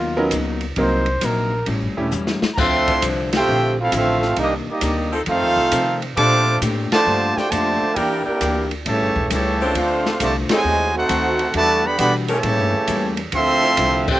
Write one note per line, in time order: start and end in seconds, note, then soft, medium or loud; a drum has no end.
0.00 0.30 D#2 medium
0.00 0.18 B2 medium
0.00 0.19 F#3 medium
0.00 0.19 A#3 medium
0.00 0.19 D#4 medium
0.00 0.29 F4 medium
0.16 0.30 F#3 medium
0.16 0.30 B3 medium
0.16 0.30 C#4 medium
0.16 0.31 D#4 medium
0.16 0.30 A#4 medium
0.31 0.75 C#2 loud
0.31 0.64 B2 medium
0.31 0.64 F#3 medium
0.31 0.64 A#3 medium
0.31 0.64 D#4 medium
0.31 kick soft
0.31 hi-hat pedal medium
0.31 ride medium
0.61 ride medium
0.76 1.20 C2 loud
0.76 1.08 C3 medium
0.76 1.04 F#3 medium
0.76 1.09 F#3 medium
0.76 1.05 A#3 medium
0.76 1.09 A#3 medium
0.76 1.04 C4 medium
0.76 1.04 D#4 medium
0.76 1.10 D#4 medium
0.76 1.04 A#4 medium
0.76 1.27 C5 medium
0.76 kick soft
0.76 ride medium
1.06 ride soft
1.21 1.65 A#1 medium
1.21 1.54 C3 medium
1.21 1.54 F#3 medium
1.21 1.54 A#3 medium
1.21 1.54 D#4 medium
1.21 kick soft
1.21 hi-hat pedal medium
1.21 ride medium
1.25 1.69 A#4 loud
1.66 1.84 A1 loud
1.66 1.98 A2 medium
1.66 1.99 G3 soft
1.66 1.99 C#4 medium
1.66 1.99 E4 medium
1.66 kick soft
1.66 ride medium
1.83 1.97 G1 medium
1.97 2.11 E1 medium
1.97 2.10 G3 medium
1.97 2.10 A3 medium
1.97 2.11 C#4 medium
1.97 2.10 E4 medium
1.97 2.11 G4 medium
2.11 2.40 E2 medium
2.11 2.44 A2 medium
2.11 2.44 G3 medium
2.11 2.44 C#4 medium
2.11 2.44 E4 medium
2.11 hi-hat pedal medium
2.27 snare medium
2.42 muted upright bass stroke soft
2.42 snare loud
2.54 3.01 D2 loud
2.54 2.88 D3 soft
2.54 2.89 F3 medium
2.54 3.02 C4 loud
2.54 2.58 A#5 medium
2.54 kick medium
2.58 3.03 F3 loud
2.58 3.03 A3 loud
2.58 2.89 C4 medium
2.58 2.89 E4 medium
2.58 3.03 A4 loud
2.58 3.03 E5 loud
2.58 3.03 F5 loud
2.58 3.03 C6 loud
2.58 snare soft
2.58 crash medium
2.88 3.45 F3 loud
2.88 3.44 D4 loud
2.88 3.44 E4 loud
2.88 3.45 C5 loud
2.88 kick medium
2.88 ride medium
3.02 3.46 C2 medium
3.02 3.34 D3 medium
3.02 3.34 F3 medium
3.02 3.34 C4 medium
3.02 3.34 E4 medium
3.02 kick soft
3.02 hi-hat pedal medium
3.02 ride medium
3.33 3.75 A3 loud
3.33 3.75 C4 loud
3.33 3.76 F4 loud
3.33 3.75 G4 loud
3.33 3.76 C5 loud
3.33 3.76 E5 loud
3.33 3.76 G5 loud
3.33 snare medium
3.33 ride medium
3.46 3.91 A#1 medium
3.46 3.78 D3 medium
3.46 3.79 F3 medium
3.46 3.79 C4 medium
3.46 3.79 E4 medium
3.80 3.93 A3 medium
3.80 3.94 C4 medium
3.80 3.94 E4 medium
3.80 3.93 F4 medium
3.80 3.95 A4 medium
3.80 3.94 F5 loud
3.92 4.36 A1 medium
3.92 4.24 D3 medium
3.92 4.24 F3 medium
3.92 4.35 A3 medium
3.92 4.24 C4 medium
3.92 4.35 C4 medium
3.92 4.24 E4 medium
3.92 4.35 F4 medium
3.92 kick soft
3.92 hi-hat pedal medium
3.92 ride medium
3.96 4.36 C4 medium
3.96 4.36 A4 medium
3.96 4.36 E5 medium
3.96 4.36 F5 loud
4.23 snare soft
4.36 4.65 C2 medium
4.36 4.68 C3 medium
4.36 4.69 D#3 medium
4.36 4.52 G3 medium
4.36 4.69 A#3 medium
4.36 4.52 A#3 medium
4.36 4.69 D4 medium
4.36 4.52 D#4 medium
4.36 kick soft
4.36 ride medium
4.41 4.54 A#3 medium
4.41 4.54 D4 medium
4.41 4.54 G4 medium
4.41 4.54 D#5 medium
4.67 5.10 G3 medium
4.67 5.10 A#3 medium
4.67 5.11 A#3 medium
4.67 5.10 D#4 medium
4.67 5.11 G4 medium
4.67 5.11 D5 medium
4.67 5.11 D#5 medium
4.67 muted upright bass stroke soft
4.81 5.25 D2 loud
4.81 5.13 C3 medium
4.81 5.13 D#3 medium
4.81 5.14 A#3 medium
4.81 5.14 D4 medium
4.81 kick soft
4.81 hi-hat pedal medium
4.81 ride medium
5.13 5.23 F3 loud
5.13 5.22 C4 medium
5.13 5.23 D#4 medium
5.13 5.23 A4 loud
5.26 5.58 F2 medium
5.26 5.41 F2 loud
5.26 5.58 D#3 medium
5.26 5.59 A3 medium
5.26 5.99 A3 loud
5.26 5.59 C4 medium
5.26 5.99 C4 loud
5.26 5.99 D#4 loud
5.26 5.98 F4 loud
5.26 5.99 A4 loud
5.26 5.99 C5 loud
5.26 5.99 F5 loud
5.26 kick soft
5.26 ride medium
5.41 5.56 D#2 medium
5.56 5.70 C2 medium
5.72 6.03 F2 medium
5.72 6.15 C3 loud
5.72 6.03 D#3 medium
5.72 6.04 A3 medium
5.72 6.04 C4 medium
5.72 kick soft
5.72 hi-hat pedal medium
5.72 ride medium
6.02 ride medium
6.16 6.60 A#2 medium
6.16 6.49 A#2 medium
6.16 6.59 F3 loud
6.16 6.86 G3 loud
6.16 6.49 A3 medium
6.16 6.59 A3 loud
6.16 6.86 C4 medium
6.16 6.86 D4 medium
6.16 6.59 D4 loud
6.16 6.49 D4 medium
6.16 6.49 G4 medium
6.16 6.85 A4 loud
6.16 6.58 C5 loud
6.16 6.58 F5 loud
6.16 6.58 A5 loud
6.16 6.58 D6 loud
6.16 kick soft
6.16 ride medium
6.61 6.89 A2 loud
6.61 6.93 A#2 medium
6.61 6.93 A3 medium
6.61 6.93 D4 medium
6.61 6.94 G4 medium
6.61 kick soft
6.61 hi-hat pedal medium
6.61 ride medium
6.92 7.34 D3 loud
6.92 7.34 F3 loud
6.92 7.34 A3 loud
6.92 7.33 F4 loud
6.92 7.33 C5 loud
6.92 7.34 D5 loud
6.92 7.33 A5 loud
6.92 muted upright bass stroke soft
6.92 snare medium
6.92 ride medium
7.06 7.34 G2 medium
7.06 7.38 A#2 soft
7.06 7.38 A3 medium
7.06 7.39 D4 medium
7.06 7.39 G4 medium
7.36 7.49 A3 medium
7.36 7.51 D4 medium
7.36 7.49 F4 medium
7.36 7.51 G4 medium
7.36 7.49 C5 medium
7.36 7.49 D5 medium
7.36 7.51 G5 loud
7.36 muted upright bass stroke soft
7.36 snare medium
7.50 7.79 F2 loud
7.50 7.83 A#2 medium
7.50 7.96 D3 medium
7.50 7.95 F3 loud
7.50 7.95 A3 medium
7.50 7.83 A3 medium
7.50 7.83 D4 medium
7.50 7.95 F4 medium
7.50 7.84 G4 medium
7.50 7.95 C5 loud
7.50 7.93 D5 medium
7.50 7.95 A5 loud
7.50 kick soft
7.50 hi-hat pedal medium
7.50 ride medium
7.82 muted upright bass stroke soft
7.94 8.24 E2 medium
7.94 8.28 E3 soft
7.94 8.65 G3 loud
7.94 8.25 A#3 medium
7.94 8.28 A#3 medium
7.94 8.24 D4 medium
7.94 8.65 D4 medium
7.94 8.29 D4 medium
7.94 8.23 E4 medium
7.94 8.66 E4 medium
7.94 8.24 G4 medium
7.94 8.23 A#4 medium
7.94 8.23 D5 loud
7.94 8.23 G5 loud
7.94 kick soft
7.94 ride medium
7.98 8.29 G4 medium
7.98 8.66 A#4 loud
8.24 8.68 A#3 medium
8.24 8.67 D4 medium
8.24 8.67 E4 medium
8.24 8.68 G4 medium
8.24 8.67 A#4 medium
8.24 8.67 D5 medium
8.24 8.67 G5 medium
8.24 muted upright bass stroke soft
8.40 8.84 D2 medium
8.40 8.72 E3 medium
8.40 8.73 A#3 medium
8.40 8.73 D4 medium
8.40 8.73 G4 medium
8.40 kick soft
8.40 hi-hat pedal medium
8.40 ride medium
8.71 ride medium
8.86 9.01 A1 medium
8.86 9.17 A2 medium
8.86 9.29 C#3 medium
8.86 9.29 E3 medium
8.86 9.17 G3 medium
8.86 9.29 A3 medium
8.86 9.18 C#4 medium
8.86 9.18 E4 medium
8.86 9.29 G4 medium
8.86 9.29 C#5 medium
8.86 9.28 E5 medium
8.86 9.28 A5 loud
8.86 kick soft
8.86 ride medium
9.01 9.15 G1 medium
9.16 9.30 E1 medium
9.16 kick medium
9.30 9.74 C#2 medium
9.30 9.62 A2 medium
9.30 9.73 C#3 medium
9.30 9.73 E3 medium
9.30 9.62 G3 medium
9.30 9.73 A3 medium
9.30 9.62 C#4 medium
9.30 9.63 E4 medium
9.30 9.74 G4 medium
9.30 9.74 C#5 medium
9.30 9.74 E5 medium
9.30 9.74 A5 medium
9.30 kick soft
9.30 hi-hat pedal medium
9.30 ride medium
9.60 10.18 F3 loud
9.60 10.18 C4 loud
9.60 10.18 D4 loud
9.60 10.17 C5 loud
9.75 10.19 D2 medium
9.75 10.07 D3 medium
9.75 10.19 A3 medium
9.75 10.07 A3 medium
9.75 10.20 C4 medium
9.75 10.08 C4 medium
9.75 10.21 D4 medium
9.75 10.20 F4 medium
9.75 10.08 F4 medium
9.75 10.22 A4 medium
9.75 10.21 C5 medium
9.75 10.21 F5 loud
9.75 kick soft
9.75 ride medium
10.06 snare medium
10.20 10.48 C2 medium
10.20 10.34 C3 medium
10.20 10.52 D3 medium
10.20 10.33 F3 medium
10.20 10.34 A3 medium
10.20 10.52 A3 medium
10.20 10.52 C4 medium
10.20 10.52 F4 medium
10.20 10.36 F4 medium
10.20 10.36 C5 medium
10.20 10.35 D5 medium
10.20 10.36 A5 medium
10.20 kick soft
10.20 hi-hat pedal medium
10.20 ride medium
10.49 10.91 A2 medium
10.49 10.91 C3 medium
10.49 10.60 F#3 loud
10.49 10.92 G#3 medium
10.49 10.61 C4 loud
10.49 10.60 D#4 loud
10.49 10.60 A4 loud
10.49 muted upright bass stroke soft
10.49 snare loud
10.49 ride medium
10.53 10.94 F#4 medium
10.53 10.94 C5 medium
10.53 10.93 D#5 medium
10.53 10.94 G#5 loud
10.64 11.08 D#2 medium
10.64 10.96 D#3 medium
10.64 10.96 A3 medium
10.64 10.96 C4 medium
10.64 10.97 F#4 medium
10.93 11.50 A3 medium
10.93 11.50 C4 medium
10.93 11.52 D#4 medium
10.93 11.50 F#4 medium
10.93 11.51 F#5 loud
10.97 11.52 A4 loud
10.97 11.52 C5 medium
11.09 11.53 D2 medium
11.09 11.41 D#3 medium
11.09 11.41 A3 medium
11.09 11.41 C4 medium
11.09 11.41 F#4 medium
11.09 kick soft
11.09 hi-hat pedal medium
11.09 ride medium
11.39 ride medium
11.54 11.98 E2 medium
11.54 11.86 E3 medium
11.54 11.86 G3 medium
11.54 11.82 A3 loud
11.54 11.86 D4 medium
11.54 11.83 F#4 loud
11.54 11.87 F#4 medium
11.54 11.83 B4 loud
11.54 11.83 D5 loud
11.54 11.83 A5 loud
11.54 kick soft
11.54 ride medium
11.85 11.97 D3 medium
11.85 11.97 G3 medium
11.85 11.97 B3 medium
11.85 11.99 G4 medium
11.85 11.99 D5 medium
11.85 11.99 F#5 loud
11.85 11.99 B5 loud
11.98 12.42 B2 medium
11.98 12.12 D3 medium
11.98 12.30 E3 medium
11.98 12.12 G3 medium
11.98 12.31 G3 medium
11.98 12.12 B3 medium
11.98 12.31 D4 medium
11.98 12.31 F#4 medium
11.98 12.14 G4 medium
11.98 12.14 D5 medium
11.98 12.13 F#5 medium
11.98 12.14 B5 loud
11.98 kick soft
11.98 hi-hat pedal medium
11.98 ride medium
12.28 13.15 C#3 medium
12.28 13.15 E3 medium
12.28 13.15 A3 medium
12.28 12.39 A3 loud
12.28 12.39 C#4 medium
12.28 12.39 G4 loud
12.28 13.15 G4 medium
12.28 12.39 A#4 loud
12.28 13.15 C#5 medium
12.28 13.15 E5 medium
12.28 13.15 A5 loud
12.28 ride medium
12.43 12.58 A2 loud
12.43 12.75 A2 soft
12.43 12.75 G3 medium
12.43 12.76 A#3 medium
12.43 12.76 C#4 medium
12.43 kick soft
12.43 ride medium
12.58 12.72 G2 medium
12.72 12.87 E2 medium
12.87 13.32 E2 medium
12.87 13.20 A2 medium
12.87 13.20 G3 medium
12.87 13.20 A#3 medium
12.87 13.20 C#4 medium
12.87 kick soft
12.87 hi-hat pedal medium
12.87 ride medium
13.17 ride medium
13.32 13.76 D2 loud
13.32 13.64 D3 medium
13.32 13.65 F3 medium
13.32 14.05 F3 loud
13.32 14.05 A3 loud
13.32 13.65 C4 medium
13.32 14.05 C4 loud
13.32 13.65 E4 medium
13.32 14.05 A4 loud
13.32 14.05 E5 loud
13.32 14.05 F5 loud
13.32 14.05 C6 loud
13.32 kick soft
13.32 ride medium
13.62 13.72 F3 loud
13.62 13.73 D4 medium
13.62 13.72 E4 medium
13.62 13.73 C5 loud
13.77 14.20 C2 loud
13.77 14.09 D3 medium
13.77 14.10 F3 medium
13.77 14.10 C4 medium
13.77 14.10 E4 medium
13.77 kick soft
13.77 hi-hat pedal medium
13.77 ride medium
14.08 14.20 A3 loud
14.08 14.20 C4 medium
14.08 14.20 F4 medium
14.08 14.20 G4 loud
14.08 14.20 C5 loud
14.08 14.20 E5 medium
14.08 14.20 G5 loud
14.08 kick medium
14.08 crash medium